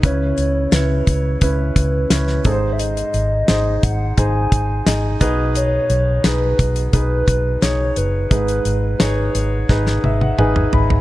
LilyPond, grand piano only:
\new Staff \with { instrumentName = "Grand piano" } { \time 4/4 \key gis \phrygian \tempo 4 = 87 << { cis4. r2 gis,8~ | gis,4 r2 r8 b,8~ | b,4 r2. | gis,4. r4 e''16 fis''16 gis''8 b''8 | } \\ { <cis' e' b'>4 <cis' e' cis''>4 <cis' e' b'>4 <cis' e' b'>8 <dis' gis' a' bis'>8~ | <dis' gis' a' bis'>4 <dis' gis' bis'>4 <dis' gis' bis'>4 <dis' gis' dis''>8 <dis' gis' b'>8~ | <dis' gis' b'>4 <dis' gis' b'>4 <dis' gis' b'>4 <dis' gis' cis''>4 | <dis' gis' b'>4 <dis' gis' cis''>4 <dis' gis' b'>4 <dis' gis' b'>4 | } >> }